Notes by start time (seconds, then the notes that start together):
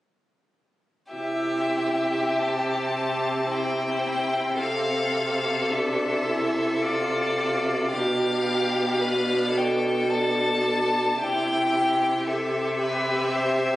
1.12 C3 E4 G4 E5
2.39 C4 A5
3.51 E4 G5
4.60 C3 A4 F5
5.71 D4 E5
6.26 E4
6.82 F4 D5
7.38 F4
7.92 B2 D4 G4 F5
9.01 D4 B4
9.54 A4 G5
10.10 D4 A5
11.19 C3 E4 G4 G5
11.72 G4
12.27 G4 A4 E5
12.81 B4
13.35 C5